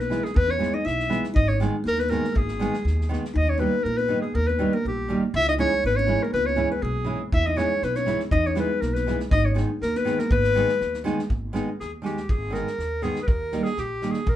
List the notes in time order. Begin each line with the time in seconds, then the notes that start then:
Already playing: B1 B3
0.00 B4
0.10 E3 G#3 B3 E4, snare
0.23 G#3 G#4, snare
0.34 E2 B3 B4, kick
0.47 C#4 C#5
0.59 E3 G#3 B3 E4, snare
0.74 D#4 D#5
0.85 B1 E4 E5, snare
0.99 snare
1.09 E3 G#3 B3 E4, snare
1.24 snare
1.34 G#1 D#4 D#5, kick
1.47 C#4 C#5
1.60 D#3 G#3 B3 D#4, snare
1.84 D#2 A#3 A#4, snare
1.97 B3 B4, snare
2.09 D#3 G#3 A#3 B3 D#4 A#4, snare
2.24 snare
2.32 G#1 G#3, kick
2.37 G#4
2.48 snare
2.60 D#3 G#3 B3 D#4, snare
2.73 snare
2.85 D#2, snare
3.01 snare
3.09 D#3 G#3 B3 D#4, snare
3.25 snare
3.34 D#2 D#4 D#5
3.47 C#4 C#5
3.58 D#3 G3 A#3 B3 D#4 B4
3.84 A#1 A#3 A#4
3.98 B3 B4
4.08 D#3 G3 A#3 D#4
4.21 G#3 G#4
4.35 D#2 A#3 A#4
4.47 B3 B4
4.59 D#3 G3 A#3 D#4
4.73 A#3 A#4
4.85 A#1 G3 G4
5.08 D#3 G3 A#3 D#4
5.34 C#2 E4 E5
5.48 D#4 D#5
5.58 E3 G#3 C#4 E4 C#5
5.84 G#1 B3 B4
5.96 C#4 C#5
6.06 E3 G#3 C#4 E4
6.23 A#3 A#4
6.33 C#2 B3 B4
6.46 C#4 C#5
6.56 E3 G#3 C#4 E4
6.71 B3 B4
6.82 B1 G#3 G#4
7.04 E3 G#3 C#4 E4
7.32 E2 E4 E5, kick
7.47 D#4 D#5
7.56 E3 G#3 B3 C#4 E4 C#5, snare
7.82 B1 B3 B4, snare
7.95 C#4 C#5, snare
8.06 E3 G#3 B3 E4, snare
8.19 snare
8.31 E2 D#4 D#5, kick
8.46 C#4 C#5
8.55 E3 G#3 B3 E4 B4, snare
8.81 B1 A#3 A#4, snare
8.94 B3 B4, snare
9.06 E3 G#3 B3 E4, snare
9.20 snare
9.31 G#1 D#4 D#5, kick
9.45 C#4 C#5
9.54 D#3 G#3 B3 D#4, snare
9.82 D#2 A#3 A#4, snare
9.95 B3 B4, snare
10.05 D#3 G#3 B3 D#4, snare
10.19 A#3 A#4, snare
10.31 G#1 B3 B4, kick
10.44 snare
10.55 D#3 G#3 B3 D#4, snare
10.68 snare
10.81 D#2, snare
10.94 snare
11.04 D#3 G#3 B3 D#4, snare
11.19 snare
11.30 G#1, kick
11.53 D#3 G#3 B3 D#4, snare
11.80 D#2 G#4, snare
12.02 D#3 G#3 B3 D#4 G4, snare
12.17 snare
12.29 G#1 G#4, kick
12.51 D#3 G#3 B3 D#4 A#4, snare
12.67 snare
12.78 D#2, snare
13.02 D#3 G#3 B3 D#4 G#4, snare
13.16 snare
13.23 B4
13.28 D#2 A#4, kick
13.52 D#3 G3 A#3 D#4, snare
13.63 G#4, snare
13.77 A#1 G4, snare
14.02 D#3 G3 A#3 D#4, snare
14.10 G#4, snare
14.26 A#1 A#4, kick